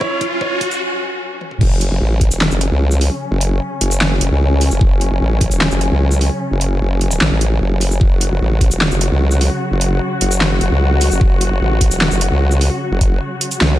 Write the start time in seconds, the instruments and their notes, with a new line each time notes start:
Already playing: string section F#2 F#3 C#4, riser
0.01 grand piano C#5, kick
0.21 kick, closed hi-hat
0.41 grand piano C#5, kick
0.61 kick, closed hi-hat
0.71 closed hi-hat, shaker
1.41 high tom
1.51 mid tom
1.61 wobble bass F#1, string section C#3 F#3 C#4, kick, crash
1.81 closed hi-hat
1.91 wobble bass F#1
2.01 wobble bass A1
2.21 kick, closed hi-hat
2.31 wobble bass E1, closed hi-hat, shaker
2.41 snare, clap
2.51 wobble bass F#1, shaker
2.61 closed hi-hat
2.71 wobble bass C#2
2.91 shaker
3.01 open hi-hat
3.31 wobble bass F#1
3.41 closed hi-hat
3.81 wobble bass F#1, closed hi-hat
3.91 closed hi-hat, shaker
4.01 snare, clap
4.11 snare
4.21 wobble bass F#1, closed hi-hat
4.31 wobble bass C#2
4.61 open hi-hat, shaker
4.71 wobble bass F#1, shaker
4.81 wobble bass F#1, kick
5.01 closed hi-hat
5.11 wobble bass F#1
5.21 wobble bass A1
5.41 kick, closed hi-hat
5.51 wobble bass E1, closed hi-hat, shaker
5.61 snare, clap
5.71 wobble bass F#1, shaker
5.81 closed hi-hat
5.91 wobble bass C#2
6.11 shaker
6.21 open hi-hat
6.51 wobble bass F#1
6.61 closed hi-hat
6.81 wobble bass F#1
7.01 closed hi-hat
7.11 closed hi-hat, shaker
7.21 wobble bass A1, snare, clap
7.31 wobble bass A1, snare
7.41 closed hi-hat
7.61 wobble bass F#1
7.81 open hi-hat, shaker
7.91 shaker
8.01 wobble bass F#1, string section F#4, kick
8.21 closed hi-hat
8.31 wobble bass F#1
8.41 wobble bass A1
8.61 kick, closed hi-hat
8.71 wobble bass E1, closed hi-hat, shaker
8.81 snare, clap
8.91 wobble bass F#1, shaker
9.01 closed hi-hat
9.11 wobble bass C#2
9.31 shaker
9.41 open hi-hat
9.71 wobble bass F#1
9.81 closed hi-hat
10.21 wobble bass F#1, closed hi-hat
10.31 closed hi-hat, shaker
10.41 snare, clap
10.51 snare
10.61 wobble bass F#1, closed hi-hat
10.71 wobble bass C#2
11.01 open hi-hat, shaker
11.11 wobble bass F#1, shaker
11.21 wobble bass F#1, kick
11.41 closed hi-hat
11.51 wobble bass F#1
11.61 wobble bass A1
11.81 kick, closed hi-hat
11.91 wobble bass E1, closed hi-hat, shaker
12.01 snare, clap
12.11 wobble bass F#1, shaker
12.21 closed hi-hat
12.31 wobble bass C#2
12.51 shaker
12.61 open hi-hat
12.91 wobble bass F#1
13.01 kick, closed hi-hat
13.41 closed hi-hat
13.51 closed hi-hat, shaker
13.61 wobble bass C#2, snare, clap, swell
13.71 snare